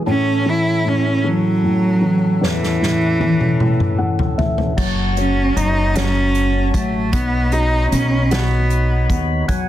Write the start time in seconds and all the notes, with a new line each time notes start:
0.06 A2 E3 C#4 A4
0.46 E3 E4
0.85 A2 C#4
1.24 E3 F#3
1.64 A2
2.01 E3
2.41 E2 E3, snare
2.64 snare
2.81 A2, snare
3.20 E3, high tom
3.41 mid tom
3.60 A2, mid tom
3.80 mid tom
3.98 E3 F#5
4.19 floor tom
4.38 A2 E5, floor tom
4.58 floor tom
4.77 F#1 F#3 F#4 C#5 A5, kick, crash
5.17 F#3 C#4, closed hi-hat
5.55 F#1 F#3 D#4, closed hi-hat
5.95 F#3 C#4, snare, closed hi-hat
6.35 closed hi-hat
6.74 A1 F#3 A3, kick, closed hi-hat
7.12 B1 B3 D#4 B5, kick, closed hi-hat
7.52 D#4 F#4, closed hi-hat
7.92 B1 B3 C#4, closed hi-hat
8.31 B3 F#4, snare, closed hi-hat
8.70 closed hi-hat
9.10 D#2 B3, kick, closed hi-hat
9.48 E2 F#3 F#4 F#5 G#5, kick, closed hi-hat